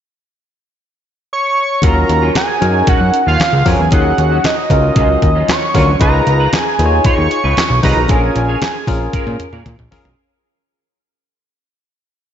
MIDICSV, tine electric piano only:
0, 0, Header, 1, 2, 480
1, 0, Start_track
1, 0, Key_signature, -6, "minor"
1, 0, Tempo, 521739
1, 1687, Time_signature, 4, 2, 24, 8
1, 11345, End_track
2, 0, Start_track
2, 0, Title_t, "Tine electric piano"
2, 0, Program_c, 0, 4
2, 1683, Note_on_c, 0, 61, 77
2, 1684, Note_on_c, 0, 65, 74
2, 1687, Note_on_c, 0, 66, 79
2, 1689, Note_on_c, 0, 70, 90
2, 2096, Note_off_c, 0, 61, 0
2, 2097, Note_off_c, 0, 65, 0
2, 2099, Note_off_c, 0, 66, 0
2, 2100, Note_off_c, 0, 70, 0
2, 2401, Note_on_c, 0, 61, 75
2, 2404, Note_on_c, 0, 63, 71
2, 2406, Note_on_c, 0, 66, 69
2, 2409, Note_on_c, 0, 70, 84
2, 2953, Note_off_c, 0, 61, 0
2, 2954, Note_off_c, 0, 63, 0
2, 2955, Note_off_c, 0, 66, 0
2, 2957, Note_off_c, 0, 70, 0
2, 3361, Note_on_c, 0, 61, 80
2, 3364, Note_on_c, 0, 65, 73
2, 3366, Note_on_c, 0, 66, 79
2, 3369, Note_on_c, 0, 70, 94
2, 3501, Note_off_c, 0, 61, 0
2, 3503, Note_off_c, 0, 65, 0
2, 3504, Note_off_c, 0, 66, 0
2, 3505, Note_off_c, 0, 70, 0
2, 3602, Note_on_c, 0, 61, 84
2, 3605, Note_on_c, 0, 63, 76
2, 3608, Note_on_c, 0, 66, 80
2, 3610, Note_on_c, 0, 68, 93
2, 4016, Note_off_c, 0, 61, 0
2, 4017, Note_off_c, 0, 63, 0
2, 4019, Note_off_c, 0, 66, 0
2, 4020, Note_off_c, 0, 68, 0
2, 4322, Note_on_c, 0, 61, 84
2, 4325, Note_on_c, 0, 65, 75
2, 4329, Note_on_c, 0, 66, 67
2, 4330, Note_on_c, 0, 70, 81
2, 4873, Note_off_c, 0, 61, 0
2, 4875, Note_off_c, 0, 65, 0
2, 4877, Note_off_c, 0, 66, 0
2, 4877, Note_off_c, 0, 70, 0
2, 5282, Note_on_c, 0, 61, 83
2, 5284, Note_on_c, 0, 65, 73
2, 5287, Note_on_c, 0, 66, 72
2, 5290, Note_on_c, 0, 70, 85
2, 5421, Note_off_c, 0, 61, 0
2, 5423, Note_off_c, 0, 65, 0
2, 5424, Note_off_c, 0, 66, 0
2, 5426, Note_off_c, 0, 70, 0
2, 5522, Note_on_c, 0, 63, 87
2, 5523, Note_on_c, 0, 65, 74
2, 5527, Note_on_c, 0, 68, 84
2, 5528, Note_on_c, 0, 71, 93
2, 5936, Note_off_c, 0, 63, 0
2, 5936, Note_off_c, 0, 65, 0
2, 5938, Note_off_c, 0, 68, 0
2, 5939, Note_off_c, 0, 71, 0
2, 6244, Note_on_c, 0, 63, 80
2, 6247, Note_on_c, 0, 65, 75
2, 6249, Note_on_c, 0, 68, 70
2, 6250, Note_on_c, 0, 71, 64
2, 6306, Note_off_c, 0, 71, 0
2, 6307, Note_on_c, 0, 73, 92
2, 6794, Note_off_c, 0, 63, 0
2, 6796, Note_off_c, 0, 65, 0
2, 6797, Note_off_c, 0, 68, 0
2, 6826, Note_off_c, 0, 73, 0
2, 7201, Note_on_c, 0, 63, 86
2, 7204, Note_on_c, 0, 65, 73
2, 7206, Note_on_c, 0, 68, 73
2, 7209, Note_on_c, 0, 71, 90
2, 7341, Note_off_c, 0, 63, 0
2, 7342, Note_off_c, 0, 65, 0
2, 7344, Note_off_c, 0, 68, 0
2, 7345, Note_off_c, 0, 71, 0
2, 7440, Note_on_c, 0, 61, 83
2, 7444, Note_on_c, 0, 65, 79
2, 7445, Note_on_c, 0, 68, 76
2, 7447, Note_on_c, 0, 69, 70
2, 7505, Note_off_c, 0, 69, 0
2, 7506, Note_on_c, 0, 70, 95
2, 7855, Note_off_c, 0, 61, 0
2, 7857, Note_off_c, 0, 65, 0
2, 7857, Note_off_c, 0, 68, 0
2, 7888, Note_off_c, 0, 70, 0
2, 8163, Note_on_c, 0, 61, 91
2, 8165, Note_on_c, 0, 65, 80
2, 8167, Note_on_c, 0, 68, 85
2, 8170, Note_on_c, 0, 70, 99
2, 8714, Note_off_c, 0, 61, 0
2, 8715, Note_off_c, 0, 65, 0
2, 8716, Note_off_c, 0, 68, 0
2, 8717, Note_off_c, 0, 70, 0
2, 9120, Note_on_c, 0, 61, 98
2, 9123, Note_on_c, 0, 65, 82
2, 9126, Note_on_c, 0, 68, 83
2, 9129, Note_on_c, 0, 70, 113
2, 9261, Note_off_c, 0, 61, 0
2, 9262, Note_off_c, 0, 65, 0
2, 9264, Note_off_c, 0, 68, 0
2, 9265, Note_off_c, 0, 70, 0
2, 11345, End_track
0, 0, End_of_file